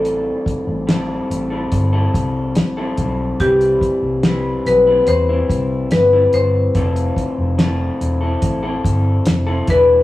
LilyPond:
<<
  \new Staff \with { instrumentName = "Marimba" } { \time 4/4 \key f \lydian \tempo 4 = 72 a'2~ a'8 r4. | g'4. b'8 c''4 b'8 c''8~ | c''2~ c''8 r4 b'8 | }
  \new Staff \with { instrumentName = "Clean electric guitar" } { \time 4/4 \key f \lydian <a, e g c' e' a'>4 <g c' e' a'>8. <g c' e' a'>8 <g c' e' a'>4 <g c' e' a'>8. | <c e g c' e' b'>4 <g c' e' b'>8. <g c' e' b'>8 <g c' e'>4 <g c' e'>8. | <f a c' e' a'>4 <a c' e' a'>8. <c' e' a'>8 <c' e' a'>4 <c' e' a'>16 <e g d' e' b'>8 | }
  \new Staff \with { instrumentName = "Fingered electric bass" } { \clef bass \time 4/4 \key f \lydian a,,8 r16 a,,8. a,,8 g,,8 c,8 a,,8 b,,8 | c,8 r16 c,8. b,,8 e,8 c,8 g,,8 g,,8 | f,,8 r16 f,,8. e,,8 a,,8 g,,8 f,,8 e,,8 | }
  \new DrumStaff \with { instrumentName = "Drums" } \drummode { \time 4/4 hh8 <hh bd>8 <hh sn>8 hh8 <hh bd>8 <hh bd>8 <hh sn>8 <hh bd>8 | <hh bd>16 hh16 <hh bd>8 <hh sn>8 <hh sn>8 hh8 <hh bd>8 <hh sn>8 hh8 | <hh bd>16 hh16 <hh bd>8 <hh sn>8 hh8 <hh bd>8 <hh bd>8 <hh sn>8 <hh bd>8 | }
>>